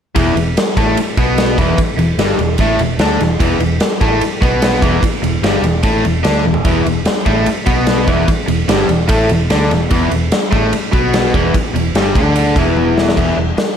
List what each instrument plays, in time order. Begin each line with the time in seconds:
0.15 fingered electric bass E1, overdriven electric guitar E2 E3, kick, ride
0.35 fingered electric bass E1, overdriven electric guitar E2, ride
0.57 snare, ride
0.77 fingered electric bass A1, overdriven electric guitar A2 A3, kick, ride
0.96 muted fingered electric bass stroke, muted overdriven electric guitar stroke, ride
1.17 fingered electric bass B1, overdriven electric guitar B2 B3, kick, ride
1.38 snare, ride
1.58 fingered electric bass E1, overdriven electric guitar E2 E3, kick, snare, ride
1.78 muted overdriven electric guitar stroke, kick, ride
1.97 fingered electric bass E1, overdriven electric guitar E2, ride
2.17 fingered electric bass G1, overdriven electric guitar G2 G3, snare, ride
2.39 fingered electric bass E1, overdriven electric guitar E2, ride
2.58 fingered electric bass A1, overdriven electric guitar A2 A3, kick, ride
2.78 fingered electric bass E1, overdriven electric guitar E2, ride
2.98 fingered electric bass D2, overdriven electric guitar D3 D4, snare, ride
3.19 fingered electric bass E1, overdriven electric guitar E2, snare, ride
3.40 fingered electric bass E1, overdriven electric guitar E2 E3, kick, ride
3.58 fingered electric bass E1, overdriven electric guitar E2, ride
3.80 snare, ride
4.01 fingered electric bass A1, overdriven electric guitar A2 A3, kick, ride
4.21 muted fingered electric bass stroke, muted overdriven electric guitar stroke, ride
4.41 fingered electric bass B1, overdriven electric guitar B2 B3, kick, ride
4.62 snare, ride
4.81 fingered electric bass E1, overdriven electric guitar E2 E3, kick, ride
5.02 muted overdriven electric guitar stroke, kick, ride
5.22 fingered electric bass E1, overdriven electric guitar E2, ride
5.42 fingered electric bass G1, overdriven electric guitar G2 G3, snare, ride
5.62 fingered electric bass E1, overdriven electric guitar E2, ride
5.83 fingered electric bass A1, overdriven electric guitar A2 A3, kick, ride
6.03 fingered electric bass E1, overdriven electric guitar E2, ride
6.23 fingered electric bass D2, overdriven electric guitar D3 D4, snare, ride
6.44 fingered electric bass E1, overdriven electric guitar E2, high tom
6.54 floor tom
6.65 fingered electric bass E1, overdriven electric guitar E2 E3, kick, ride
6.85 fingered electric bass E1, overdriven electric guitar E2, ride
7.05 snare, ride
7.26 fingered electric bass A1, overdriven electric guitar A2 A3, kick, ride
7.46 muted fingered electric bass stroke, muted overdriven electric guitar stroke, ride
7.66 fingered electric bass B1, overdriven electric guitar B2 B3, kick, ride
7.87 snare, ride
8.07 fingered electric bass E1, overdriven electric guitar E2 E3, kick, ride
8.27 muted overdriven electric guitar stroke, kick, ride
8.48 fingered electric bass E1, overdriven electric guitar E2, ride
8.68 fingered electric bass G1, overdriven electric guitar G2 G3, snare, ride
8.88 fingered electric bass E1, overdriven electric guitar E2, ride
9.08 fingered electric bass A1, overdriven electric guitar A2 A3, kick, ride
9.29 fingered electric bass E1, overdriven electric guitar E2, ride
9.50 fingered electric bass D2, overdriven electric guitar D3 D4, snare, ride
9.71 fingered electric bass E1, overdriven electric guitar E2, snare, ride
9.90 fingered electric bass E1, overdriven electric guitar E2 E3, kick, ride
10.11 fingered electric bass E1, overdriven electric guitar E2, ride
10.32 snare, ride
10.52 fingered electric bass A1, overdriven electric guitar A2 A3, kick, ride
10.72 muted fingered electric bass stroke, muted overdriven electric guitar stroke, ride
10.92 fingered electric bass B1, overdriven electric guitar B2 B3, kick, ride
11.14 snare, ride
11.34 fingered electric bass E1, overdriven electric guitar E2 E3, kick, ride
11.54 muted overdriven electric guitar stroke, kick, ride
11.74 fingered electric bass E1, overdriven electric guitar E2, ride
11.94 fingered electric bass G1, overdriven electric guitar G2 G3, snare, ride
12.15 fingered electric bass D2, overdriven electric guitar D3 D4, kick, ride
12.36 ride
12.56 fingered electric bass E1, overdriven electric guitar E2 E3, kick, ride
12.77 high tom
12.98 snare
13.09 snare
13.16 fingered electric bass E1, overdriven electric guitar E2 E3, kick, crash
13.37 fingered electric bass E1, overdriven electric guitar E2
13.58 muted overdriven electric guitar stroke, snare, open hi-hat